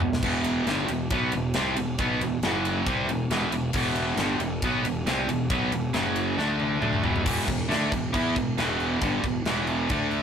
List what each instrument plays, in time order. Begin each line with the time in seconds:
0.00 fingered electric bass E1, distorted electric guitar E2 B2, floor tom
0.13 snare
0.23 fingered electric bass E1, distorted electric guitar E2 B2 E3, kick, crash
0.44 ride
0.66 fingered electric bass G1, distorted electric guitar G2 D3 G3, snare, ride
0.88 fingered electric bass E1, distorted electric guitar E2 B2, ride
1.10 fingered electric bass B1, distorted electric guitar B2 F#3 B3, kick, ride
1.32 fingered electric bass E1, distorted electric guitar E2 B2, ride
1.54 fingered electric bass C2, distorted electric guitar C3 G3 C4, snare, ride
1.76 fingered electric bass E1, distorted electric guitar E2 B2, ride
1.98 fingered electric bass B1, distorted electric guitar B2 F#3 B3, kick, ride
2.21 fingered electric bass E1, distorted electric guitar E2 B2, ride
2.43 fingered electric bass F#1, distorted electric guitar F#2 C#3 F#3, snare, ride
2.65 ride
2.86 fingered electric bass C2, distorted electric guitar C3 G3 C4, kick, ride
3.07 fingered electric bass E1, distorted electric guitar E2 B2, ride
3.29 fingered electric bass E1, distorted electric guitar E2 B2 E3, snare, ride
3.51 fingered electric bass E1, distorted electric guitar E2 B2, ride
3.73 fingered electric bass E1, distorted electric guitar E2 B2 E3, kick, crash
3.95 ride
4.17 fingered electric bass G1, distorted electric guitar G2 D3 G3, snare, ride
4.40 fingered electric bass E1, distorted electric guitar E2 B2, ride
4.62 fingered electric bass B1, distorted electric guitar B2 F#3 B3, kick, ride
4.83 fingered electric bass E1, distorted electric guitar E2 B2, ride
5.05 fingered electric bass C2, distorted electric guitar C3 G3 C4, snare, ride
5.27 fingered electric bass E1, distorted electric guitar E2 B2, ride
5.50 fingered electric bass B1, distorted electric guitar B2 F#3 B3, kick, ride
5.71 fingered electric bass E1, distorted electric guitar E2 B2, ride
5.93 fingered electric bass F#1, distorted electric guitar F#2 C#3 F#3, snare, ride
6.16 ride
6.37 fingered electric bass D2, distorted electric guitar D3 A3 D4, snare
6.60 high tom
6.81 fingered electric bass D2, distorted electric guitar D3 A3 D4, mid tom
6.93 mid tom
7.03 fingered electric bass E1, distorted electric guitar E2 B2 E3, floor tom
7.16 floor tom
7.25 fingered electric bass E1, distorted electric guitar E2 B2 E3, kick, crash
7.47 fingered electric bass E1, distorted electric guitar E2 B2, kick, crash
7.68 fingered electric bass D2, distorted electric guitar D3 A3 D4, snare, crash
7.91 fingered electric bass E1, distorted electric guitar E2 B2, kick, crash
8.12 fingered electric bass E2, distorted electric guitar E3 B3 E4, kick, crash
8.35 fingered electric bass E1, distorted electric guitar E2 B2, kick, crash
8.58 fingered electric bass E1, distorted electric guitar E2 B2 E3, snare, crash
8.80 crash
9.01 fingered electric bass G1, distorted electric guitar G2 D3 G3, kick, crash
9.23 fingered electric bass E1, distorted electric guitar E2 B2, kick, crash
9.45 fingered electric bass E1, distorted electric guitar E2 B2 E3, snare, crash
9.67 crash
9.89 fingered electric bass D2, distorted electric guitar D3 A3 D4, kick, crash
10.11 crash